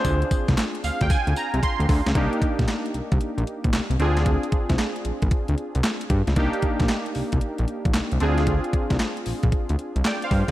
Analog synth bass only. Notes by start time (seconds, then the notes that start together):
0.05 D2
0.49 C2
0.84 D2
1.01 D2
1.10 D2
1.27 D2
1.54 C2
1.80 D2
1.89 D2
2.06 C#2
2.15 C2
2.59 A#1
2.95 C2
3.12 C2
3.38 A#1
3.64 A#1
3.73 C2
3.90 C2
3.99 D2
4.70 C2
5.05 A#1
5.22 A#1
5.49 D2
5.75 C2
6.10 G2
6.28 C#2
6.36 C2
6.80 A#1
7.16 C2
7.33 C2
7.59 A#1
7.85 A#1
7.95 C2
8.12 C2
8.22 D2
8.91 C2
9.27 A#1
9.43 A#1
9.70 D2
9.96 C2
10.31 G2